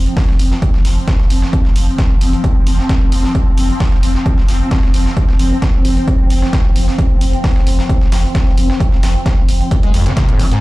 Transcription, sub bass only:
0.29 F1
0.39 F1
0.74 F1
0.85 F1
1.20 F1
1.30 F1
1.65 F1
1.76 F1
2.10 F1
2.21 F1
2.56 F1
2.67 F1
3.01 F1
3.12 F1
3.47 F1
3.58 F1
3.92 F1
4.03 F1
4.38 F1
4.48 F1
4.83 F1
4.94 F1
5.29 F1
5.39 F1
5.74 F1
5.85 F1
6.20 F1
6.30 F1
6.65 F1
6.76 F1
7.10 F1
7.21 F1
7.56 F1
7.67 F1
8.01 F1
8.12 F1
8.47 F1
8.58 F1
8.92 F1
9.03 F1
9.38 F1
9.48 F1
9.83 F1
9.94 F1
10.29 F1
10.39 F1

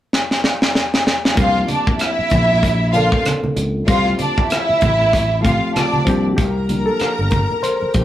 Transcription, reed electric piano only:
1.35 F3 A#3 C4 D4 G4
2.93 F3 A#3 C4 D4 A4
3.87 F3 A3 C4 F4 G4
5.41 F3 A3 C4
5.46 G4
5.76 F4
6.05 F3 A#3 C4 D4 G4
6.31 F#4
6.36 G4
6.69 F3 A#3 D4
6.86 A4
7.31 A#4
7.63 C5

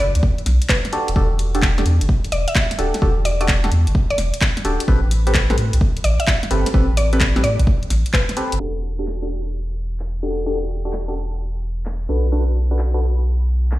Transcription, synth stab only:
0.93 D4 F#4 G4 A4
1.16 D4 F#4 G4 A4
1.55 D4 F#4 G4 A4
1.78 D4 F#4 G4 A4
2.79 D4 F#4 G4 A4
3.02 D4 F#4 G4 A4
3.41 D4 F#4 G4 A4
3.64 D4 F#4 G4 A4
4.65 D4 F#4 G4 A4
4.88 C4 G4 A4 B4
5.27 C4 G4 A4 B4
5.50 C4 G4 A4 B4
6.51 C4 G4 A4 B4
6.74 C4 G4 A4 B4
7.13 C4 G4 A4 B4
7.36 C4 G4 A4 B4
8.37 C4 G4 A4 B4
8.60 D4 F#4 G4 A4
8.99 D4 F#4 G4 A4
9.22 D4 F#4 G4 A4
10.23 D4 F#4 G4 A4
10.46 D4 F#4 G4 A4
10.85 D4 F#4 G4 A4
11.08 D4 F#4 G4 A4
12.09 D4 F#4 A4 B4
12.32 D4 F#4 A4 B4
12.71 D4 F#4 A4 B4
12.94 D4 F#4 A4 B4

